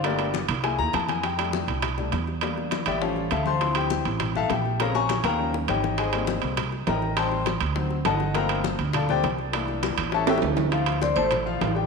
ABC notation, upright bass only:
X:1
M:4/4
L:1/8
Q:1/4=202
K:Cmix
V:1 name="Upright bass" clef=bass
G,,,3 C,,2 ^D,, F,,2- | [K:F] F,,3 C,,3 E,,2- | E,,3 A,,,3 D,,2- | D,,3 A,,,3 B,,,2- |
B,,,3 _E,,3 _A,,,2- | _A,,,3 C,,3 =A,,,2- | A,,,3 D,,3 G,,,2- | G,,,3 D,,3 C,,2- |
C,,3 A,,,3 D,,2- | [K:Dm] D,,3 A,,,3 A,,,2 |]